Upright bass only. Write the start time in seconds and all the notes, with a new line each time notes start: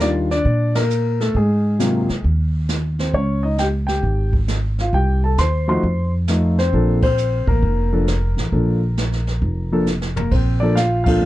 Already playing: D#2
0.45 A#2
1.34 G#2
2.10 muted upright bass stroke
2.24 D#2
3.14 C#2
4.03 G#1
4.93 C2
5.38 D#2
5.84 F2
6.73 A#1
7.47 A1
7.62 F1
8.37 A1
8.52 A#1
9.42 F1
10.31 A#1
11.21 F1